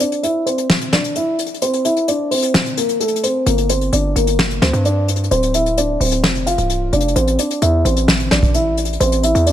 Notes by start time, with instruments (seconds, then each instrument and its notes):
0.00 felt piano D4 D5, closed hi-hat
0.12 closed hi-hat
0.23 felt piano E4 E5, closed hi-hat
0.46 felt piano C4 C5, closed hi-hat
0.58 closed hi-hat
0.70 snare
0.81 closed hi-hat
0.92 felt piano D4 D5, snare
1.04 closed hi-hat
1.16 felt piano E4 E5, closed hi-hat
1.39 closed hi-hat
1.46 closed hi-hat
1.54 closed hi-hat
1.62 felt piano C4 C5, closed hi-hat
1.73 closed hi-hat
1.85 felt piano E4 E5, closed hi-hat
1.97 closed hi-hat
2.08 felt piano D4 D5, closed hi-hat
2.31 felt piano C4 C5, open hi-hat
2.43 closed hi-hat
2.54 snare
2.66 closed hi-hat
2.77 felt piano A#3 A#4, closed hi-hat
2.89 closed hi-hat
3.00 felt piano A3 A4, closed hi-hat
3.08 closed hi-hat
3.16 closed hi-hat
3.23 felt piano C4 C5, closed hi-hat
3.46 808-style bass G1, felt piano A#3 A#4, closed hi-hat
3.58 closed hi-hat
3.69 felt piano C4 C5, closed hi-hat
3.81 closed hi-hat
3.93 808-style bass G1, felt piano D4 D5, closed hi-hat
4.16 808-style bass G1, felt piano A#3 A#4, closed hi-hat
4.27 closed hi-hat
4.39 snare
4.51 closed hi-hat
4.62 808-style bass D2, felt piano C4 C5, snare
4.73 808-style bass G2, closed hi-hat
4.85 felt piano D4 D5, closed hi-hat
5.08 closed hi-hat
5.16 closed hi-hat
5.23 closed hi-hat
5.31 808-style bass D1, felt piano C4 C5, closed hi-hat
5.43 closed hi-hat
5.54 felt piano E4 E5, closed hi-hat
5.66 closed hi-hat
5.77 felt piano D4 D5, closed hi-hat
6.00 808-style bass D1, felt piano C4 C5, open hi-hat
6.12 closed hi-hat
6.23 808-style bass F1, snare
6.35 closed hi-hat
6.46 felt piano F4 F5, closed hi-hat
6.58 808-style bass C1, closed hi-hat
6.70 closed hi-hat
6.93 808-style bass F1, felt piano D4 D5, closed hi-hat
7.00 closed hi-hat
7.08 closed hi-hat
7.16 808-style bass A1, felt piano C4 C5, closed hi-hat
7.27 closed hi-hat
7.39 felt piano D4 D5, closed hi-hat
7.50 closed hi-hat
7.62 808-style bass E2, felt piano E4 E5, closed hi-hat
7.85 808-style bass A1, felt piano C4 C5, closed hi-hat
7.96 closed hi-hat
8.08 snare
8.20 closed hi-hat
8.31 808-style bass A1, felt piano D4 D5, snare
8.43 kick, closed hi-hat
8.54 felt piano E4 E5, closed hi-hat
8.77 closed hi-hat
8.85 closed hi-hat
8.93 closed hi-hat
9.00 808-style bass A1, felt piano C4 C5, closed hi-hat
9.12 closed hi-hat
9.23 felt piano E4 E5, closed hi-hat
9.35 808-style bass E2, closed hi-hat
9.46 felt piano D4 D5, closed hi-hat